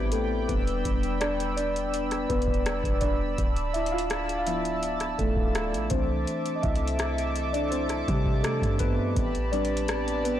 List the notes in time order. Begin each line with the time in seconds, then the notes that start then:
Already playing: A1 G3 B3 C4 D4 G4 B4 C5 D5 G5 B5 D6
0.12 A3 A4, closed hi-hat
0.48 E1 G3 B3 D4 B4 D5 B5 E6, kick, closed hi-hat
0.67 closed hi-hat
0.85 E1, kick, closed hi-hat
1.03 closed hi-hat
1.20 D4 D5, cross-stick, closed hi-hat
1.40 closed hi-hat
1.57 D4 D5, closed hi-hat
1.76 closed hi-hat
1.94 closed hi-hat
2.11 cross-stick, closed hi-hat
2.29 E1 B3 B4, kick, closed hi-hat
2.42 closed hi-hat
2.47 kick
2.54 closed hi-hat
2.66 cross-stick, closed hi-hat
2.84 E1, kick, closed hi-hat
3.01 D4 D5, kick, closed hi-hat
3.38 D1 A5, kick, closed hi-hat
3.56 closed hi-hat
3.73 E4 E5, closed hi-hat
3.85 E5, closed hi-hat
3.91 F4 F5
3.98 closed hi-hat
4.10 cross-stick, closed hi-hat
4.29 closed hi-hat
4.39 F5
4.46 F3 B3 E4 E5, closed hi-hat
4.65 closed hi-hat
4.83 closed hi-hat
5.00 cross-stick, closed hi-hat
5.18 D1 A3 A4, kick, closed hi-hat
5.37 kick
5.55 cross-stick, closed hi-hat
5.74 A1, closed hi-hat
5.90 C2 E3 A3 C4 D4 A4 C5 E5 A5 D6, kick, closed hi-hat
6.27 closed hi-hat
6.46 closed hi-hat
6.55 D#5
6.63 C2 E4 E5, kick, closed hi-hat
6.75 closed hi-hat
6.87 closed hi-hat
6.99 cross-stick, closed hi-hat
7.18 closed hi-hat
7.36 closed hi-hat
7.53 D4 D5, closed hi-hat
7.71 C4 C5, closed hi-hat
7.89 cross-stick, closed hi-hat
8.07 C3 G3 G4, kick, closed hi-hat
8.26 kick
8.43 A3 A4, cross-stick, closed hi-hat
8.62 G2, kick, closed hi-hat
8.79 B3 B4, kick, closed hi-hat
9.16 A1 G4 D5 A5 B5, kick, closed hi-hat
9.35 closed hi-hat
9.52 G3 B3 C4 D4 D5, closed hi-hat
9.65 closed hi-hat
9.77 closed hi-hat
9.88 cross-stick, closed hi-hat
10.08 closed hi-hat
10.24 B3 B4, closed hi-hat